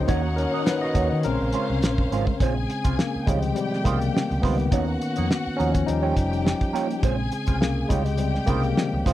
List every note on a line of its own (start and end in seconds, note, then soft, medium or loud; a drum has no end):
0.00 0.08 D#3 medium
0.00 0.10 F3 soft
0.00 0.11 G3 soft
0.00 0.11 C4 medium
0.00 0.10 D#4 medium
0.00 0.10 F4 medium
0.00 0.10 G4 medium
0.00 0.08 C#5 medium
0.07 0.44 D#2 loud
0.07 0.48 D#3 medium
0.07 0.27 A#3 medium
0.07 0.48 A#3 soft
0.07 0.37 C#4 medium
0.07 0.24 D#4 medium
0.07 1.22 D#4 medium
0.07 0.23 F#4 medium
0.07 0.36 F#4 medium
0.07 1.22 C#5 medium
0.07 0.38 C#5 medium
0.07 0.23 C#5 medium
0.07 1.22 F#5 medium
0.07 kick loud
0.07 closed hi-hat medium
0.24 muted clean electric guitar stroke soft
0.36 0.65 C#4 medium
0.36 0.67 A#4 medium
0.36 muted clean electric guitar stroke soft
0.36 closed hi-hat medium
0.53 0.65 A#3 soft
0.53 0.65 D#4 soft
0.53 0.65 F#4 soft
0.53 0.66 C#5 medium
0.66 0.82 D#4 medium
0.66 0.82 B4 medium
0.66 snare loud
0.66 closed hi-hat medium
0.81 1.22 F#4 medium
0.81 1.25 D#5 medium
0.95 1.08 D#2 loud
0.95 1.11 A#3 medium
0.95 1.11 D#4 medium
0.95 1.10 F#4 medium
0.95 1.09 C#5 medium
0.95 kick medium
0.95 closed hi-hat medium
1.11 1.22 D#3 medium
1.11 muted clean electric guitar stroke soft
1.23 1.37 A#1 loud
1.23 2.07 C#3 medium
1.23 2.08 G#3 soft
1.23 2.08 C4 medium
1.23 2.38 C#4 medium
1.23 1.79 C#4 medium
1.23 1.78 A#4 medium
1.23 2.38 C5 medium
1.23 2.38 F5 medium
1.23 muted clean electric guitar stroke soft
1.23 closed hi-hat medium
1.41 1.51 A#1 medium
1.41 muted clean electric guitar stroke soft
1.53 1.73 G#3 medium
1.53 1.70 C#4 medium
1.53 1.69 F4 medium
1.53 1.68 C5 medium
1.53 closed hi-hat medium
1.69 1.80 C2 medium
1.69 muted clean electric guitar stroke soft
1.82 2.06 A#1 medium
1.82 muted clean electric guitar stroke soft
1.82 snare loud
1.82 closed hi-hat medium
1.98 muted clean electric guitar stroke soft
1.98 kick medium
2.12 2.24 G#1 medium
2.12 2.31 G#3 medium
2.12 2.28 C#4 medium
2.12 2.27 F4 medium
2.12 2.26 C5 medium
2.12 closed hi-hat medium
2.27 muted clean electric guitar stroke soft
2.27 kick medium
2.40 2.63 A#1 loud
2.40 2.98 C#3 medium
2.40 2.60 G#3 medium
2.40 3.23 G#3 soft
2.40 3.24 C4 medium
2.40 2.56 C#4 medium
2.40 2.56 F4 medium
2.40 3.25 G#4 medium
2.40 2.55 C5 medium
2.40 3.25 G#5 medium
2.40 kick loud
2.40 closed hi-hat medium
2.56 muted clean electric guitar stroke soft
2.69 muted clean electric guitar stroke soft
2.69 closed hi-hat medium
2.84 2.96 C2 medium
2.84 2.97 G#3 soft
2.84 2.97 C#4 soft
2.84 2.98 F4 medium
2.84 2.98 C5 medium
2.84 kick medium
2.84 closed hi-hat medium
2.98 3.26 C#3 medium
2.98 3.28 A#3 medium
2.98 snare loud
3.16 muted fingered electric bass stroke soft
3.26 3.50 C#2 medium
3.26 3.54 C3 medium
3.26 3.66 D#3 medium
3.26 3.66 F3 soft
3.26 3.54 G3 soft
3.26 3.43 G3 medium
3.26 3.54 G#3 medium
3.26 3.67 C4 medium
3.26 3.42 D#4 soft
3.26 3.41 F4 medium
3.26 4.69 G4 medium
3.26 3.42 C#5 medium
3.26 4.69 G5 medium
3.26 kick medium
3.26 closed hi-hat medium
3.42 muted clean electric guitar stroke soft
3.42 closed hi-hat medium
3.55 3.77 C3 medium
3.55 3.79 G3 medium
3.55 muted clean electric guitar stroke soft
3.55 closed hi-hat medium
3.72 muted clean electric guitar stroke soft
3.72 snare soft
3.77 3.84 A3 medium
3.84 4.08 C2 medium
3.84 4.39 C#3 medium
3.84 4.04 G3 medium
3.84 4.44 A#3 medium
3.84 4.01 D#4 medium
3.84 4.01 F4 medium
3.84 4.00 C5 medium
3.84 kick medium
3.84 closed hi-hat medium
4.01 muted clean electric guitar stroke soft
4.01 closed hi-hat soft
4.17 snare loud
4.30 4.41 C#2 medium
4.30 muted clean electric guitar stroke soft
4.30 closed hi-hat soft
4.42 4.66 C#2 medium
4.42 4.70 D#3 medium
4.42 4.62 G3 medium
4.42 5.54 B3 medium
4.42 4.59 D#4 medium
4.42 4.59 F4 medium
4.42 4.58 C5 medium
4.42 kick medium
4.42 open hi-hat medium
4.59 muted clean electric guitar stroke soft
4.59 closed hi-hat soft
4.71 4.95 D#2 loud
4.71 5.84 D#3 medium
4.71 4.91 A#3 medium
4.71 5.84 A#3 soft
4.71 5.55 C#4 medium
4.71 4.88 D#4 medium
4.71 5.86 F#4 medium
4.71 4.87 F#4 medium
4.71 4.86 C#5 medium
4.71 5.85 F#5 medium
4.71 kick loud
4.71 closed hi-hat medium
4.88 muted clean electric guitar stroke soft
5.01 muted clean electric guitar stroke soft
5.01 closed hi-hat medium
5.16 5.28 F2 medium
5.16 5.29 A#3 soft
5.16 5.29 D#4 soft
5.16 5.30 F#4 soft
5.16 5.30 C#5 medium
5.16 closed hi-hat medium
5.31 snare loud
5.47 muted fingered electric bass stroke soft
5.57 5.82 D#2 medium
5.57 5.72 F3 medium
5.57 5.74 A#3 medium
5.57 5.70 C#4 medium
5.57 5.74 D#4 soft
5.57 5.74 F#4 medium
5.57 5.73 C#5 medium
5.57 closed hi-hat medium
5.74 muted clean electric guitar stroke soft
5.74 kick medium
5.74 closed hi-hat soft
5.86 6.11 D#2 medium
5.86 6.27 F3 medium
5.86 6.71 G3 medium
5.86 6.27 C#4 medium
5.86 6.70 D#4 medium
5.86 7.01 G4 medium
5.86 7.01 G5 medium
5.86 muted clean electric guitar stroke soft
5.86 closed hi-hat medium
6.03 6.15 A#3 medium
6.03 6.16 F4 medium
6.03 6.16 G4 medium
6.03 6.16 C#5 medium
6.17 6.51 F1 medium
6.17 kick medium
6.17 closed hi-hat medium
6.31 muted clean electric guitar stroke soft
6.31 closed hi-hat soft
6.45 muted clean electric guitar stroke soft
6.45 snare loud
6.60 muted clean electric guitar stroke soft
6.60 kick medium
6.60 closed hi-hat soft
6.73 6.93 A#3 medium
6.73 6.90 F4 medium
6.73 6.89 G4 medium
6.73 6.88 C#5 medium
6.73 snare soft
6.73 closed hi-hat medium
6.90 muted clean electric guitar stroke soft
6.90 closed hi-hat soft
7.03 7.26 A#1 loud
7.03 7.43 C#3 medium
7.03 7.23 G#3 medium
7.03 7.43 G#3 soft
7.03 7.43 C4 medium
7.03 7.18 C#4 medium
7.03 7.18 F4 medium
7.03 7.89 G#4 medium
7.03 7.17 C5 medium
7.03 7.89 G#5 medium
7.03 kick loud
7.03 closed hi-hat medium
7.18 muted clean electric guitar stroke soft
7.32 muted clean electric guitar stroke soft
7.32 closed hi-hat medium
7.47 7.81 C2 medium
7.47 7.59 G#3 soft
7.47 7.60 C#4 soft
7.47 7.60 F4 medium
7.47 7.60 C5 soft
7.47 kick medium
7.47 closed hi-hat medium
7.61 7.89 C#3 medium
7.61 7.91 A#3 medium
7.61 muted clean electric guitar stroke soft
7.61 snare loud
7.89 8.36 C#2 medium
7.89 8.18 C3 medium
7.89 8.06 G3 medium
7.89 8.19 G#3 medium
7.89 8.05 D#4 medium
7.89 8.05 F4 medium
7.89 9.13 G4 medium
7.89 8.05 C#5 medium
7.89 9.13 G5 medium
7.89 kick medium
7.89 closed hi-hat medium
8.05 muted clean electric guitar stroke soft
8.05 closed hi-hat soft
8.17 8.47 C3 medium
8.17 8.48 G3 medium
8.17 muted clean electric guitar stroke soft
8.17 closed hi-hat medium
8.34 muted clean electric guitar stroke soft
8.34 snare soft
8.46 8.71 C2 medium
8.46 9.13 C#3 medium
8.46 8.68 G3 medium
8.46 9.13 A#3 medium
8.46 8.64 D#4 medium
8.46 8.64 F4 medium
8.46 8.63 C5 medium
8.46 kick medium
8.46 closed hi-hat medium
8.63 closed hi-hat soft
8.76 9.13 D#3 medium
8.76 9.13 F3 soft
8.76 9.13 G3 soft
8.76 9.13 C4 medium
8.76 snare medium
8.93 9.03 C#2 medium
8.93 muted clean electric guitar stroke soft
9.06 9.13 C#2 medium
9.06 9.13 G3 medium
9.06 9.13 D#4 medium
9.06 9.13 F4 medium
9.06 9.13 C5 medium
9.06 kick medium
9.06 snare soft
9.06 closed hi-hat medium